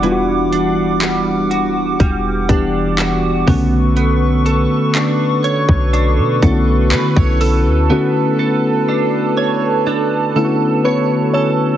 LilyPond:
<<
  \new Staff \with { instrumentName = "Analog synth pad" } { \time 4/4 \key b \minor \tempo 4 = 61 << { d'''2.~ d'''8 cis'''8~ | cis'''2.~ cis'''8 a''8~ | a''1 | } \\ { <g fis''>2.~ <g fis''>8 <a' b'>8~ | <a' b'>1~ | <a' b'>1 | } >> }
  \new Staff \with { instrumentName = "Clean electric guitar" } { \time 4/4 \key b \minor <e g d' fis'>8 d'8 g8 fis'8 g8 d'8 fis'8 b8 | b8 a'8 d'8 cis''8 d'8 a'8 b'16 cis''16 a'8 | b8 a'8 d'8 cis''8 d'8 a'8 cis''8 a'8 | }
  \new Staff \with { instrumentName = "Synth keys" } { \time 4/4 \key b \minor << { r1 | r1 | r2. <b b'>8 <cis' cis''>8 | } \\ { <e g b d' f' fis'>2 r8 <e g b d' g'>4 <cis d a b cis' fis'>8~ | <cis d a b cis' fis'>4. r4 <d a b cis' e' fis'>4. | <d a b cis' fis'>2 r8 <d a b cis' e' fis'>4. | } >> }
  \new Staff \with { instrumentName = "808-style bass" } { \clef bass \time 4/4 \key b \minor e,,2 e,,8 e,,4 b,,8~ | b,,8. r4 b,,8 b,16 b,,8 d16 b,,8 d,16 | r1 | }
  \new DrumStaff \with { instrumentName = "Drums" } \drummode { \time 4/4 hh8 hh8 <hc hh>8 hh8 <hh bd>8 <hh bd>8 <hc hh>8 <hho bd>8 | hh8 hh8 <hc hh>8 hh16 bd16 hh8 <hh bd>8 <hc hh>16 bd16 hho8 | r4 r4 r4 r4 | }
>>